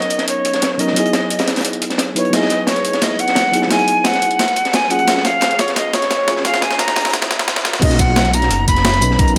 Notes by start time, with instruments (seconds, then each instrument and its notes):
Already playing: fm electric piano F#3 B3 C#4 D#4 A#4, flute D#5
0.02 closed hi-hat
0.10 closed hi-hat
0.19 snare, closed hi-hat
0.28 flute C#5, closed hi-hat
0.45 closed hi-hat
0.54 snare, closed hi-hat
0.62 snare, closed hi-hat
0.78 fm electric piano F#3 B3 C#4 D#4 A#4, flute D#5, closed hi-hat
0.87 snare
0.93 fm electric piano F#3 B3 D#4, closed hi-hat
0.98 fm electric piano E4 G#4
1.06 closed hi-hat
1.13 snare, closed hi-hat
1.30 closed hi-hat
1.39 snare, closed hi-hat
1.47 snare, closed hi-hat
1.56 snare, closed hi-hat
1.60 snare, closed hi-hat
1.65 closed hi-hat
1.73 closed hi-hat
1.82 closed hi-hat
1.90 snare, closed hi-hat
1.98 snare, closed hi-hat
2.15 fm electric piano F#3 B3 D#4 E4 B4, flute C#5, closed hi-hat
2.25 closed hi-hat
2.30 fm electric piano F#3 B3 D#4, flute D#5, snare, closed hi-hat, riser
2.35 fm electric piano E4 G#4
2.42 snare
2.50 snare, closed hi-hat
2.67 flute C#5, snare, closed hi-hat
2.76 closed hi-hat
2.85 closed hi-hat
2.93 snare, closed hi-hat
3.01 flute D#5, snare, closed hi-hat
3.19 flute F#5, closed hi-hat
3.28 snare, closed hi-hat
3.35 snare, closed hi-hat
3.52 fm electric piano F#3 B3 D#4 E4 G#4, closed hi-hat
3.62 snare
3.67 fm electric piano F#3 B3 D#4, snare, closed hi-hat
3.71 fm electric piano E4 G#4, flute G#5
3.79 closed hi-hat
3.88 closed hi-hat
4.04 flute F#5, snare, closed hi-hat
4.14 snare, closed hi-hat
4.22 closed hi-hat
4.31 closed hi-hat
4.39 snare, closed hi-hat
4.48 closed hi-hat
4.56 closed hi-hat
4.65 snare, closed hi-hat
4.73 flute G#5, snare, closed hi-hat
4.89 fm electric piano F#3 A#3 C#4 F4 G#4, flute F#5, closed hi-hat
4.99 closed hi-hat
5.04 fm electric piano F#3 A#3 C#4, snare, closed hi-hat
5.09 fm electric piano F4 G#4
5.17 snare
5.25 flute F5, snare, closed hi-hat
5.41 snare, closed hi-hat
5.51 closed hi-hat
5.59 flute C#5, snare, closed hi-hat
5.68 snare, closed hi-hat
5.76 flute D#5, snare, closed hi-hat
5.93 flute C#5, snare, closed hi-hat
6.02 snare, closed hi-hat
6.10 snare, closed hi-hat
6.26 fm electric piano F#3 A#3 C#4 F4 G#4, snare, closed hi-hat
6.36 snare
6.42 fm electric piano F#3 A#3 C#4, flute F5, snare, closed hi-hat
6.47 fm electric piano F4 G#4
6.54 snare, closed hi-hat
6.61 flute G#5, snare, closed hi-hat
6.71 snare
6.79 flute A#5, snare, closed hi-hat
6.88 snare, closed hi-hat
6.96 snare, closed hi-hat
7.00 snare, closed hi-hat
7.05 snare, closed hi-hat
7.09 snare, closed hi-hat
7.13 snare, closed hi-hat
7.22 snare, closed hi-hat
7.31 snare, closed hi-hat
7.39 snare, closed hi-hat
7.48 snare, closed hi-hat
7.56 snare, closed hi-hat
7.63 fm electric piano F#3 A#3 C#4 F4 A#4, snare, closed hi-hat
7.73 snare, closed hi-hat
7.79 detuned saw bass B1, fm electric piano F#3 B3 C#4, kick, closed hi-hat, crash
7.83 fm electric piano A#3 D#4, flute D#5
7.91 snare, tambourine
7.99 flute F#5, kick, snare, closed hi-hat, tambourine
8.16 snare, closed hi-hat
8.25 closed hi-hat
8.33 flute A#5, closed hi-hat, tambourine
8.42 snare, closed hi-hat
8.51 detuned saw bass F#1, closed hi-hat
8.68 flute B5, kick, closed hi-hat, tambourine
8.76 snare, closed hi-hat
8.85 snare, closed hi-hat
8.93 tambourine
9.01 detuned saw bass B1, fm electric piano F#3 B3 C#4 D#4 B4, closed hi-hat, tambourine
9.11 snare
9.16 detuned saw bass B1, fm electric piano F#3 B3 C#4, flute A#5, kick, closed hi-hat
9.21 fm electric piano D#4 A#4
9.27 closed hi-hat, tambourine